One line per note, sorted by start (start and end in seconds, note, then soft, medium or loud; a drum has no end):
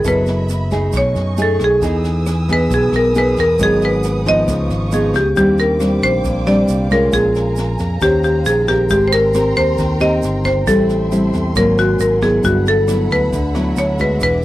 0.00 0.90 D#5 medium
0.00 0.92 B5 medium
0.04 0.89 F#1 medium
0.04 0.91 F#3 medium
0.04 0.49 B3 medium
0.04 0.49 E4 medium
0.04 0.49 A4 medium
0.04 0.97 B4 loud
0.04 0.92 E5 medium
0.04 kick medium
0.04 cross-stick soft
0.04 snare soft
0.04 shaker medium
0.26 snare soft
0.26 shaker soft
0.49 snare soft
0.49 shaker medium
0.71 1.34 A3 medium
0.71 1.34 D#4 medium
0.71 1.34 G#4 medium
0.71 kick soft
0.71 snare soft
0.71 shaker soft
0.93 1.14 B1 medium
0.93 1.80 B2 medium
0.93 1.81 D#5 medium
0.93 4.44 G#5 medium
0.93 1.81 C#6 medium
0.93 kick medium
0.93 cross-stick medium
0.93 snare soft
0.93 shaker medium
0.97 1.41 C#5 medium
1.15 1.57 F#2 loud
1.15 snare soft
1.15 shaker soft
1.37 1.78 A3 medium
1.37 1.78 D#4 medium
1.37 1.79 G#4 medium
1.37 snare soft
1.37 shaker medium
1.42 1.62 A4 medium
1.60 1.80 B1 medium
1.60 kick soft
1.60 cross-stick medium
1.60 snare soft
1.60 shaker soft
1.64 2.53 G#4 medium
1.82 2.66 E2 medium
1.82 2.68 E3 medium
1.82 2.45 B3 medium
1.82 2.45 D#4 medium
1.82 2.45 G#4 medium
1.82 5.33 B4 medium
1.82 5.33 D#6 medium
1.82 3.58 E6 medium
1.82 kick medium
1.82 snare soft
1.82 shaker medium
2.04 snare soft
2.04 shaker soft
2.26 cross-stick medium
2.26 snare soft
2.26 shaker medium
2.48 3.12 B3 medium
2.48 3.12 D#4 medium
2.48 3.12 G#4 medium
2.48 kick soft
2.48 snare soft
2.48 shaker soft
2.53 2.73 B4 loud
2.70 2.91 B1 loud
2.70 3.57 B2 medium
2.70 2.95 G#4 medium
2.70 kick medium
2.70 snare soft
2.70 shaker medium
2.92 3.34 B1 medium
2.92 3.17 A#4 medium
2.92 cross-stick medium
2.92 snare soft
2.92 shaker soft
3.15 3.43 B3 medium
3.15 3.44 D#4 medium
3.15 3.44 G#4 medium
3.15 3.39 B4 medium
3.15 snare soft
3.15 shaker medium
3.37 3.57 E2 medium
3.37 3.61 A#4 medium
3.37 kick soft
3.37 snare soft
3.37 shaker soft
3.59 4.44 G#1 medium
3.59 4.46 G#2 medium
3.59 4.22 F#3 medium
3.59 4.22 B3 medium
3.59 4.22 D#4 medium
3.59 4.47 F#5 medium
3.59 kick medium
3.59 cross-stick medium
3.59 snare soft
3.59 shaker medium
3.63 3.84 G#4 loud
3.81 4.28 B4 medium
3.81 snare soft
3.81 shaker soft
4.03 snare soft
4.03 shaker medium
4.26 4.88 F3 medium
4.26 4.89 B3 medium
4.26 4.89 D#4 medium
4.26 5.11 D#5 loud
4.26 kick soft
4.26 snare soft
4.26 shaker soft
4.48 4.68 C#2 loud
4.48 5.34 C#3 medium
4.48 5.35 F5 medium
4.48 5.35 C#6 medium
4.48 kick medium
4.48 cross-stick medium
4.48 snare soft
4.48 shaker medium
4.70 5.11 G#1 medium
4.70 snare soft
4.70 shaker soft
4.92 5.20 F3 medium
4.92 5.20 B3 medium
4.92 5.20 D#4 medium
4.92 5.15 G#4 medium
4.92 snare soft
4.92 shaker medium
5.14 5.34 C#2 medium
5.14 5.36 G4 medium
5.14 kick soft
5.14 cross-stick medium
5.14 snare soft
5.14 shaker soft
5.36 5.98 D#2 medium
5.36 6.22 D#3 medium
5.36 5.77 G3 medium
5.36 5.77 C4 medium
5.36 5.77 D4 medium
5.36 5.59 G4 medium
5.36 7.12 C5 medium
5.36 7.99 F5 medium
5.36 7.12 G5 medium
5.36 7.11 D6 medium
5.36 kick medium
5.36 snare soft
5.36 shaker medium
5.58 6.04 A#4 medium
5.58 snare soft
5.58 shaker soft
5.80 6.43 G3 medium
5.80 6.43 C4 medium
5.80 6.43 D4 medium
5.80 cross-stick medium
5.80 snare soft
5.80 shaker medium
6.02 6.23 A#1 medium
6.02 6.48 C5 loud
6.02 kick soft
6.02 snare soft
6.02 shaker soft
6.24 6.66 A#1 loud
6.24 7.11 A#2 medium
6.24 kick medium
6.24 snare soft
6.24 shaker medium
6.46 6.87 G3 medium
6.46 6.87 C4 medium
6.46 6.88 D4 medium
6.46 6.92 D5 medium
6.46 cross-stick medium
6.46 snare soft
6.46 shaker soft
6.68 7.10 C2 medium
6.68 snare soft
6.68 shaker medium
6.90 7.76 G#3 medium
6.90 7.76 C#4 medium
6.90 7.76 F4 medium
6.90 7.14 A#4 medium
6.90 kick soft
6.90 snare soft
6.90 shaker soft
7.12 7.75 A#1 medium
7.12 7.99 A#2 medium
7.12 8.04 G#4 loud
7.12 8.01 A#4 medium
7.12 8.01 G#5 medium
7.12 8.89 A#5 medium
7.12 kick medium
7.12 cross-stick medium
7.12 snare soft
7.12 shaker medium
7.35 snare soft
7.35 shaker soft
7.56 snare soft
7.56 shaker medium
7.78 8.00 F2 medium
7.78 kick soft
7.78 snare soft
7.78 shaker soft
8.01 8.43 D#2 loud
8.01 8.88 D#3 medium
8.01 8.64 C#4 medium
8.01 8.65 G4 medium
8.01 8.23 G4 medium
8.01 8.89 C5 medium
8.01 8.65 C5 medium
8.01 8.89 F5 medium
8.01 11.52 G5 medium
8.01 kick medium
8.01 cross-stick medium
8.01 snare soft
8.01 shaker medium
8.24 8.47 G4 medium
8.24 snare soft
8.24 shaker soft
8.45 8.87 A#1 medium
8.45 8.69 G#4 medium
8.45 snare soft
8.45 shaker medium
8.67 9.31 C4 medium
8.67 9.31 G4 medium
8.67 8.90 G4 medium
8.67 9.31 A#4 medium
8.67 kick soft
8.67 cross-stick medium
8.67 snare soft
8.67 shaker soft
8.89 9.52 G#1 loud
8.89 9.76 G#3 medium
8.89 9.06 G4 loud
8.89 10.65 A#4 medium
8.89 10.65 A#5 medium
8.89 10.65 C6 medium
8.89 kick medium
8.89 snare soft
8.89 shaker medium
9.08 9.13 C5 medium
9.12 9.54 A#4 medium
9.12 snare soft
9.12 shaker soft
9.34 9.97 C4 medium
9.34 9.97 G4 medium
9.34 9.98 A#4 medium
9.34 cross-stick medium
9.34 snare soft
9.34 shaker medium
9.56 9.77 D#2 medium
9.56 10.02 C5 loud
9.56 kick soft
9.56 snare soft
9.56 shaker soft
9.78 10.20 D#2 loud
9.78 10.65 D#3 medium
9.78 kick medium
9.78 snare soft
9.78 shaker medium
10.00 10.63 C4 medium
10.00 10.63 G4 medium
10.00 10.64 A#4 medium
10.00 10.42 D#5 loud
10.00 cross-stick medium
10.00 snare soft
10.00 shaker soft
10.22 10.64 G1 medium
10.22 snare soft
10.22 shaker medium
10.45 10.68 C5 medium
10.45 kick soft
10.45 snare soft
10.45 shaker soft
10.67 11.29 A1 loud
10.67 11.53 A2 medium
10.67 11.08 G3 medium
10.67 11.08 C4 soft
10.67 11.08 E4 medium
10.67 11.52 A4 loud
10.67 11.55 A4 medium
10.67 11.55 E5 medium
10.67 12.42 C6 medium
10.67 kick medium
10.67 cross-stick medium
10.67 snare soft
10.67 shaker medium
10.89 snare soft
10.89 shaker soft
11.11 11.52 G3 medium
11.11 11.52 C4 medium
11.11 11.52 E4 medium
11.11 snare soft
11.11 shaker medium
11.34 11.54 E2 medium
11.34 kick soft
11.34 snare soft
11.34 shaker soft
11.55 11.97 G#1 medium
11.55 12.42 G#2 medium
11.55 12.19 F#3 medium
11.55 12.19 A#3 medium
11.55 12.19 C4 medium
11.55 12.43 A#4 medium
11.55 11.79 A#4 medium
11.55 14.45 F#5 medium
11.55 12.43 G#5 medium
11.55 kick medium
11.55 cross-stick medium
11.55 snare soft
11.55 shaker medium
11.78 11.99 F#4 medium
11.78 snare soft
11.78 shaker soft
11.99 12.41 G#1 medium
11.99 12.23 A#4 medium
11.99 snare soft
11.99 shaker medium
12.21 12.84 F#3 medium
12.21 12.85 B3 medium
12.21 12.85 E4 medium
12.21 12.45 G#4 medium
12.21 kick soft
12.21 cross-stick medium
12.21 snare soft
12.21 shaker soft
12.43 13.06 G1 loud
12.43 13.30 G2 medium
12.43 12.67 F#4 medium
12.43 14.20 A4 medium
12.43 14.45 E5 medium
12.43 14.19 B5 medium
12.43 kick medium
12.43 snare soft
12.43 shaker medium
12.66 13.13 A4 medium
12.66 snare soft
12.66 shaker soft
12.88 13.32 F#3 medium
12.88 13.32 B3 medium
12.88 13.32 E4 medium
12.88 cross-stick medium
12.88 snare soft
12.88 shaker medium
13.11 13.31 D2 medium
13.11 13.53 B4 medium
13.11 kick soft
13.11 snare soft
13.11 shaker soft
13.32 13.74 D2 medium
13.32 14.19 D3 medium
13.32 kick medium
13.32 snare soft
13.32 shaker medium
13.55 13.95 F#3 medium
13.55 13.96 B3 medium
13.55 13.96 E4 medium
13.55 cross-stick medium
13.55 snare soft
13.55 shaker soft
13.76 14.18 D2 medium
13.76 14.00 C#5 medium
13.76 snare soft
13.76 shaker medium
13.98 14.45 G#3 medium
13.98 14.45 D4 medium
13.98 14.45 F#4 medium
13.98 14.22 B4 medium
13.98 kick soft
13.98 snare soft
13.98 shaker soft
14.20 14.45 E1 loud
14.20 14.45 E3 medium
14.20 14.45 G#4 medium
14.20 14.45 B4 loud
14.20 14.45 D6 medium
14.20 kick medium
14.20 cross-stick medium
14.20 snare soft
14.20 shaker medium